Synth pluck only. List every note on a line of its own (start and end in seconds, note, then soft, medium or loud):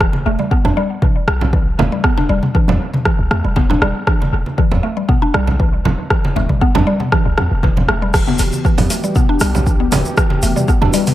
0.01 0.13 E3 medium
0.26 0.39 A3 medium
0.39 0.50 G3 medium
0.51 0.59 B3 loud
0.65 0.76 D4 loud
0.77 0.89 G3 loud
1.02 1.14 E3 medium
1.53 1.66 E3 medium
1.79 1.91 A3 medium
1.92 2.03 G3 medium
2.04 2.11 B3 loud
2.18 2.28 D4 loud
2.29 2.41 G3 loud
2.55 2.67 E3 medium
3.06 3.18 E3 medium
3.31 3.44 A3 medium
3.45 3.55 G3 medium
3.56 3.64 B3 loud
3.70 3.81 D4 loud
3.82 3.94 G3 loud
4.07 4.19 E3 medium
4.58 4.71 E3 medium
4.83 4.96 A3 medium
4.97 5.08 G3 medium
5.09 5.16 B3 loud
5.22 5.33 D4 loud
5.34 5.46 G3 loud
5.60 5.72 E3 medium
6.11 6.23 E3 medium
6.36 6.49 A3 medium
6.49 6.60 G3 medium
6.61 6.69 B3 loud
6.75 6.86 D4 loud
6.87 6.99 G3 loud
7.12 7.24 E3 medium
7.63 7.76 E3 medium
7.89 8.01 A3 medium
8.02 8.13 G3 medium
8.14 8.26 E3 medium
8.27 8.39 B3 medium
8.65 8.78 E3 medium
8.90 9.03 A3 medium
9.04 9.15 G3 medium
9.16 9.23 B3 loud
9.29 9.40 D4 loud
9.41 9.53 G3 loud
9.67 9.79 E3 medium
9.80 9.91 B3 medium
10.17 10.30 E3 medium
10.43 10.56 A3 medium
10.56 10.67 G3 medium
10.68 10.76 B3 loud
10.82 10.92 D4 loud
10.94 11.06 G3 loud